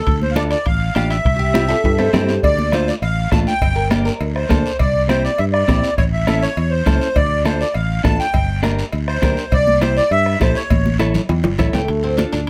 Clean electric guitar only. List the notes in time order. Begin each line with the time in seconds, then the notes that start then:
0.36 D4 F4 A4
0.96 D4 F4 G4
1.54 C4 E4 G4
2.13 C4 E4 G4
2.73 A3 D4 F4
3.32 A3 D4 F4
3.91 A#3 D4 G4
4.49 A#3 D4 A4
5.09 C4 E4 G4
5.68 C4 E4 G4
6.27 C#4 E4 A4
6.86 C#4 E4 A4
7.45 D4 F4 A4
8.04 D4 F4 A4
8.63 D4 G4 A#4
9.22 D4 G4 A#4
9.82 E4 G4 C5
10.41 E4 G4 A4
10.99 E4 A4 C#5
11.59 E4 A4 C#5 E5
11.74 G5
12.18 D4 F4 A4